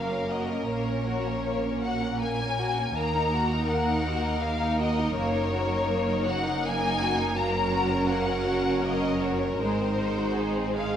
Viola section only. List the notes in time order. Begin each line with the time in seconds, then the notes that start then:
Already playing: A#3 C#4
2.97 A#3 D#4
7.37 C#4 F#4
9.62 G#3 D#4